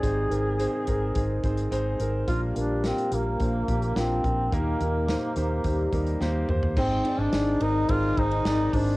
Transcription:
<<
  \new Staff \with { instrumentName = "Grand piano" } { \time 4/4 \key aes \lydian \tempo 4 = 107 <c' ees' aes' c''>8 <c' ees' aes' bes'>8 <c' ees' aes' c''>8 <c' ees' aes' bes'>8 <c' ees' aes' c''>8 <c' ees' aes' c''>8 <c' ees' aes' c''>8 <c' ees' aes' bes'>8 | <bes d' f' bes'>8 <bes d' f' bes'>8 <bes d' f' bes'>8 <bes d' f' bes'>8 <bes d' f' c''>8 <bes d' f' g'>8 <bes d' f' bes'>8 <bes d' f' bes'>8 | <bes ees' g' bes'>8 <bes ees' g' bes'>8 <bes ees' g' c''>8 <bes ees' g' c''>8 <bes ees' g' c''>8 <bes ees' g' bes'>8 <bes ees' g' c''>8 <bes ees' g' c''>8 | <c' ees' aes' c''>8 <c' ees' aes' d''>8 <c' ees' aes' d''>8 <c' ees' aes' bes'>8 <c' ees' aes' bes'>8 <c' ees' aes' c''>8 <c' ees' aes' d''>8 <c' ees' aes' c''>8 | }
  \new Staff \with { instrumentName = "Grand piano" } { \clef bass \time 4/4 \key aes \lydian <aes, ees>4. r2 r8 | <bes, f>4. r2 r8 | bes,4. r2 r8 | <aes, ees>4. r2 r8 | }
  \new Staff \with { instrumentName = "Duduk" } { \time 4/4 \key aes \lydian aes'2~ aes'8 r4. | f'8 d'8 c'8 bes4. c'4 | bes2. r4 | c'8. d'8. ees'8 f'8 ees'4 d'8 | }
  \new Staff \with { instrumentName = "French horn section" } { \time 4/4 \key aes \lydian <c c'>2~ <c c'>8 r8 <aes aes'>8 r8 | <g g'>2~ <g g'>8 r8 <f f'>8 r8 | <ees ees'>4. r8 <g g'>4. r8 | <ees ees'>1 | }
  \new Staff \with { instrumentName = "Fingered electric bass" } { \clef bass \time 4/4 \key aes \lydian aes,,8 aes,,8. r16 aes,,8 aes,,8 aes,,8 aes,,8 aes,,8 | bes,,8 bes,,8. r16 bes,,8 bes,,8 bes,,8 bes,,8 bes,,8 | ees,8 ees,8. r16 ees,8 ees,8 ees,8 ees,8 ees,8 | aes,,8 r16 aes,,16 aes,,8 aes,,8 aes,,8 aes,,8 aes,,8 aes,,8 | }
  \new DrumStaff \with { instrumentName = "Drums" } \drummode { \time 4/4 <hh bd>8 hh8 hh8 <hh bd>8 <hh bd>8 <hh bd>16 hh16 hh8 hh8 | <hh bd>8 hh8 <hh sn>16 hh16 hh8 <hh bd>8 <hh bd>16 hh16 <hh sn>8 <hh bd>8 | <hh bd>8 hh8 <hh sn>8 hh8 <hh bd>8 <hh bd>16 hh16 sn8 toml16 tomfh16 | <cymc bd>8 cymr8 <cymr sn>8 cymr8 <bd cymr>8 <bd cymr>16 cymr16 <cymr sn>8 <hho bd cymr>8 | }
>>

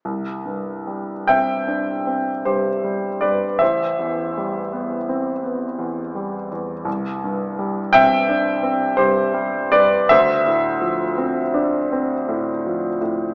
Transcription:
<<
  \new Staff \with { instrumentName = "Grand piano" } { \time 9/8 \key c \major \tempo 4. = 55 r4. <e'' g''>4. <g' c''>4 <b' d''>8 | <c'' e''>1 r8 | r4. <e'' g''>4. <g' c''>4 <b' d''>8 | <c'' e''>1 r8 | }
  \new Staff \with { instrumentName = "Grand piano" } { \clef bass \time 9/8 \key c \major c,8 g,8 g8 c'8 d'8 c'8 g,8 g8 g,8 | a,,8 e,8 g8 b8 c'8 b8 e,8 g8 e,8 | c,8 g,8 g8 c'8 d'8 c'8 g,8 g8 g,8 | d,8 a,8 f8 c'8 d'8 c'8 a,8 f8 a,8 | }
>>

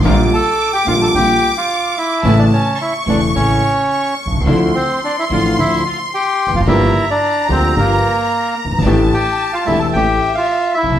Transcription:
<<
  \new Staff \with { instrumentName = "Violin section" } { \time 4/4 \key g \dorian \tempo 4 = 110 d'''1 | a''4 cis'''2 cis'''4 | c'''1 | bes''1 |
a''2 e''2 | }
  \new Staff \with { instrumentName = "Bandoneon" } { \time 4/4 \key g \dorian r8 <a' a''>8. <g' g''>16 <f' f''>16 <a' a''>16 <g' g''>8. <f' f''>8. <e' e''>8~ | <e' e''>16 <d' d''>16 <cis' cis''>8 <e' e''>8 <d' d''>8 <cis' cis''>4. r8 | r8 <c' c''>8 <d' d''>16 <e' e''>16 <f' f''>8 <e' e''>8 <f' f''>8 <g' g''>8. <f' f''>16 | <e' e''>8. <d' d''>8. <c' c''>8 <bes bes'>4. r8 |
r8 <g' g''>8. <f' f''>16 <e' e''>16 <a' a''>16 <g' g''>8. <f' f''>8. <e' e''>8 | }
  \new Staff \with { instrumentName = "String section" } { \time 4/4 \key g \dorian <g bes f'>8 r4 <g bes f'>8 <g bes f'>8 r4. | <a cis' e'>8 r4 <a cis' e'>8 <a cis' e'>8 r4. | <f d' e'>8 r4 <f d' e'>8 <f d' e'>8 r4. | <bes f' g'>8 r4 <bes f' g'>8 <bes f' g'>8 r4. |
<a d' g'>8 r4 <a d' g'>8 <a cis' g'>8 r4. | }
  \new Staff \with { instrumentName = "Grand piano" } { \clef bass \time 4/4 \key g \dorian <bes,, bes, d g bes f'>8 r4 <bes,, bes, d g bes f'>8 <bes,, bes, d g bes f'>8 r4. | <a,, a, cis e a e'>8 r4 <e,, e, cis e a e'>8 <a,, a, cis e a e'>8 r4 r32 b,,32 c,32 cis,32 | <d, d f a e'>8 r4 <a,, a, d f a e'>8 <d, d f a e'>8 r4 r32 e,32 f,32 fis,32 | <g,, g, f bes d' g'>8 r4 <d, d f bes d' g'>8 <g,, g, f bes d' g'>8 r4 r32 fis,,32 g,,32 gis,,32 |
<a,, a, e a d' g'>8 r4 <e,, e, e a d' g'>8 <a,, a, e a cis' g'>8 r4 r32 b,,32 c,32 r32 | }
  \new Staff \with { instrumentName = "Upright bass" } { \clef bass \time 4/4 \key g \dorian bes,,16. r4 r32 bes,,16. r32 bes,,16. r4. r32 | a,,16. r4 r32 e,,16. r32 a,,16. r4 r16 b,,32 c,32 cis,32 | d,16. r4 r32 a,,16. r32 d,16. r4 r16 e,,32 f,,32 fis,,32 | g,,16. r4 r32 d,16. r32 g,,16. r4 r16 fis,,32 g,,32 gis,,32 |
a,,16. r4 r32 e,,16. r32 a,,16. r4 r16 b,,32 c,32 r32 | }
>>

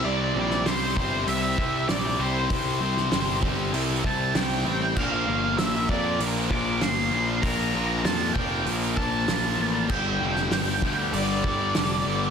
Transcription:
<<
  \new Staff \with { instrumentName = "Lead electric guitar" } { \time 4/4 \key c \mixolydian \tempo 4 = 97 d''4 c''8 c''8 e''4 d''8 c''8~ | c''4. r4 a''8 g''4 | f''4 e''8 d''8 r8 d'''8 c'''4 | bes''4 a''8 g''8 r8 a''4. |
g''2 d''2 | }
  \new Staff \with { instrumentName = "Distorted electric guitar" } { \time 4/4 \key c \mixolydian <c g c' e' g' c''>4 <c g c' e' g' c''>2~ <c g c' e' g' c''>8 <c g c' e' g' c''>8~ | <c g c' e' g' c''>4 <c g c' e' g' c''>2~ <c g c' e' g' c''>8 r8 | <bes, f bes d' f' bes'>4. <bes, f bes d' f' bes'>2~ <bes, f bes d' f' bes'>8 | <bes, f bes d' f' bes'>4. <bes, f bes d' f' bes'>2~ <bes, f bes d' f' bes'>8 |
<g, d g d' g'>4. <g, d g d' g'>2~ <g, d g d' g'>8 | }
  \new Staff \with { instrumentName = "Distorted electric guitar" } { \clef bass \time 4/4 \key c \mixolydian <c g c'>8 <c g c'>8 <c g c'>8 <c g c'>8 <c g c'>8 <c g c'>8 <c g c'>8 <c g c'>8 | <c g c'>8 <c g c'>8 <c g c'>8 <c g c'>8 <c g c'>8 <c g c'>8 <c g c'>8 <c g c'>8 | <bes, f bes>8 <bes, f bes>8 <bes, f bes>8 <bes, f bes>8 <bes, f bes>8 <bes, f bes>8 <bes, f bes>8 <bes, f bes>8 | <bes, f bes>8 <bes, f bes>8 <bes, f bes>8 <bes, f bes>8 <bes, f bes>8 <bes, f bes>8 <bes, f bes>8 <bes, f bes>8 |
<g, d g>8 <g, d g>8 <g, d g>8 <g, d g>8 <g, d g>8 <g, d g>8 <g, d g>8 <g, d g>8 | }
  \new Staff \with { instrumentName = "Distorted electric guitar" } { \clef bass \time 4/4 \key c \mixolydian <c g c'>8 <c g c'>8 <c g c'>8 <c g c'>8 <c g c'>8 <c g c'>8 <c g c'>8 <c g c'>8 | <c g c'>8 <c g c'>8 <c g c'>8 <c g c'>8 <c g c'>8 <c g c'>8 <c g c'>8 <c g c'>8 | <bes, f bes>8 <bes, f bes>8 <bes, f bes>8 <bes, f bes>8 <bes, f bes>8 <bes, f bes>8 <bes, f bes>8 <bes, f bes>8 | <bes, f bes>8 <bes, f bes>8 <bes, f bes>8 <bes, f bes>8 <bes, f bes>8 <bes, f bes>8 <bes, f bes>8 <bes, f bes>8 |
<g, d g>8 <g, d g>8 <g, d g>8 <g, d g>8 <g, d g>8 <g, d g>8 <g, d g>8 <g, d g>8 | }
  \new Staff \with { instrumentName = "Picked electric bass" } { \clef bass \time 4/4 \key c \mixolydian c,8 bes,,8 c,8 g,,8 c,8 c,8 bes,,8 c,8 | c,8 c,8 g,,8 g,,8 c,8 c,8 c,8 a,,8 | bes,,8 g,,8 bes,,8 f,8 bes,,8 bes,,8 g,,8 bes,,8 | bes,,8 bes,,8 f,8 f,,8 bes,,8 bes,,8 bes,,8 a,,8 |
g,,8 f,,8 g,,8 d,8 g,,8 g,,8 f,,8 g,,8 | }
  \new DrumStaff \with { instrumentName = "Drums" } \drummode { \time 4/4 r8. sn16 <hho sn>8 bd8 hho8 bd8 <hho sn>4 | <hho bd>8. sn16 <hho sn>8 bd8 hho8 bd8 <hho sn>4 | <cymc bd>4 <hho sn>8 bd8 hho8 bd8 <hho sn>4 | <hho bd>4 <hho sn>8 bd8 hho8 bd8 <hho sn>4 |
<cymc bd>8. sn16 <hho sn>8 bd8 hho8 bd8 <hho sn>4 | }
>>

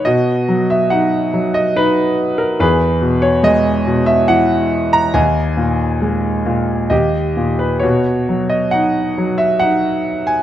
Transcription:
<<
  \new Staff \with { instrumentName = "Grand piano" } { \time 3/4 \key b \major \tempo 4 = 70 << { dis''8. e''16 fis''8. dis''16 b'8. ais'16 | b'8. cis''16 dis''8. e''16 fis''8. ais''16 | gis''4 r4 dis''8. b'16 | cis''8. dis''16 fis''8. e''16 fis''8. gis''16 | } \\ { fis'4. r4. | gis'4. r4. | dis''4. r8 g'4 | fis'4. r4. | } >> }
  \new Staff \with { instrumentName = "Grand piano" } { \clef bass \time 3/4 \key b \major b,8 fis8 dis'8 fis8 dis'4 | e,8 b,8 gis8 b,8 e4 | dis,8 ais,8 gis8 ais,8 dis,8 ais,8 | b,8 fis8 dis'8 fis8 dis'4 | }
>>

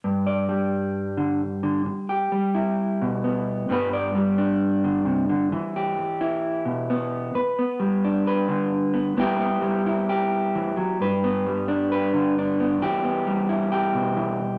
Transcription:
\new Staff \with { instrumentName = "Clean electric guitar" } { \time 4/4 \key g \major \tempo 4 = 132 << { r8 d''2.~ d''8 | r8 g'4 e'4. b4 | <g b b'>8 d''4 d'2~ d'8 | r8 g'4 e'4. b4 |
b'8 b4 d'8 b'4. b8 | <g b e' g'>8 b4 e'8 g'2 | b'8 b4 d'8 b'4 d'8 b8 | g'8 b4 e'8 g'2 | } \\ { g,4 g4. d8 r8 d8 | r4 g4. b,4. | g,4 g4. d8 c8 d8 | e2~ e8 b,4. |
r4 g4. d4. | r4 g2 e8 fis8 | g,4 g4. d4. | e4 g4. b,8 e8 r8 | } >> }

